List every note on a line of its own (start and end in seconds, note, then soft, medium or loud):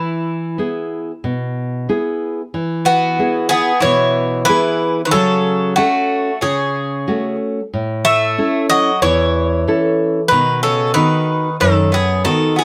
0.00 0.56 E3 medium
0.00 1.86 E4 medium
0.58 1.10 B3 soft
0.58 1.10 E4 soft
0.58 1.11 G#4 soft
1.24 1.87 B2 medium
1.89 2.41 B3 soft
1.89 2.41 E4 soft
1.89 2.41 G#4 medium
2.54 3.17 E3 medium
2.85 3.46 B3 medium
2.85 3.47 F#4 medium
3.19 3.71 B3 soft
3.19 3.71 E4 soft
3.19 3.71 G#4 soft
3.49 3.81 B3 medium
3.49 3.80 G#4 medium
3.80 4.46 B2 medium
3.80 4.43 E3 medium
3.80 4.44 C#5 medium
4.45 5.01 E3 medium
4.45 5.00 B3 soft
4.45 5.01 E4 soft
4.45 5.00 B4 medium
4.49 5.00 G#4 soft
5.05 5.12 D#3 medium
5.05 5.11 B4 medium
5.11 5.73 C#3 medium
5.11 5.76 F#3 medium
5.11 5.73 A4 medium
5.76 6.38 A3 medium
5.76 6.29 C#4 soft
5.76 6.38 F#4 medium
5.76 6.30 F#4 soft
5.76 6.30 A4 medium
6.41 7.35 C#3 medium
6.41 7.05 C#3 medium
6.41 7.36 G#4 medium
7.07 7.60 A3 medium
7.07 7.59 C#4 soft
7.07 7.59 F#4 soft
7.74 8.36 A2 medium
8.05 8.65 A3 medium
8.05 8.65 E5 loud
8.38 8.89 C#4 soft
8.38 8.90 E4 soft
8.38 8.90 A4 soft
8.69 9.00 F#3 medium
8.69 8.99 D#5 loud
9.02 9.65 E2 medium
9.02 10.28 E3 medium
9.02 10.27 C#5 medium
9.67 10.19 C#4 soft
9.67 10.19 E4 soft
9.67 10.19 A4 medium
10.28 10.94 B2 medium
10.28 10.61 D#3 medium
10.28 10.60 B4 medium
10.63 10.93 C#3 medium
10.63 10.93 A4 medium
10.94 11.56 D#3 medium
10.94 11.48 B3 soft
10.94 11.48 D#4 soft
10.94 11.48 F#4 medium
10.94 11.56 B4 medium
11.60 12.24 F#2 medium
11.60 11.90 D#3 medium
11.60 11.91 A4 medium
11.92 12.22 B3 medium
11.92 12.24 G#4 medium
12.25 12.55 D#3 medium
12.25 12.64 B3 soft
12.25 12.64 D#4 soft
12.25 12.64 F#4 medium
12.25 12.55 A4 medium
12.56 12.64 B3 soft
12.56 12.64 G#4 medium